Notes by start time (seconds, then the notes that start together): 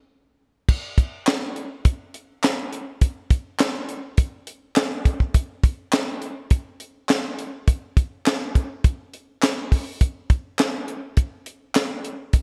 0.69 kick, crash
0.98 kick, closed hi-hat
1.27 snare, clap, closed hi-hat
1.56 closed hi-hat
1.85 kick, closed hi-hat
2.14 closed hi-hat
2.43 snare, clap, closed hi-hat
2.73 closed hi-hat
3.01 kick, closed hi-hat
3.30 kick, closed hi-hat
3.59 snare, clap, closed hi-hat
3.89 closed hi-hat
4.17 kick, closed hi-hat
4.47 closed hi-hat
4.76 snare, clap, closed hi-hat
5.05 kick, closed hi-hat
5.20 kick
5.34 kick, closed hi-hat
5.64 kick, closed hi-hat
5.92 snare, clap, closed hi-hat
6.22 closed hi-hat
6.50 kick, closed hi-hat
6.80 closed hi-hat
7.09 snare, clap, closed hi-hat
7.39 closed hi-hat
7.68 kick, closed hi-hat
7.97 kick, closed hi-hat
8.26 snare, clap, closed hi-hat
8.55 kick, closed hi-hat
8.84 kick, closed hi-hat
9.14 closed hi-hat
9.42 snare, clap, closed hi-hat
9.72 kick, open hi-hat
10.01 kick, closed hi-hat
10.30 kick, closed hi-hat
10.59 snare, clap, closed hi-hat
10.88 closed hi-hat
11.17 kick, closed hi-hat
11.46 closed hi-hat
11.75 snare, clap, closed hi-hat
12.05 closed hi-hat
12.33 kick, closed hi-hat